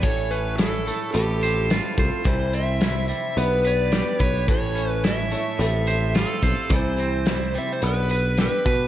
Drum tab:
HH |xxxxxxxx|xxxxxxxx|xxxxxxxx|xxxxxxxx|
SD |--o---o-|--o---o-|--o---o-|--o---o-|
BD |o------o|o------o|o------o|o------o|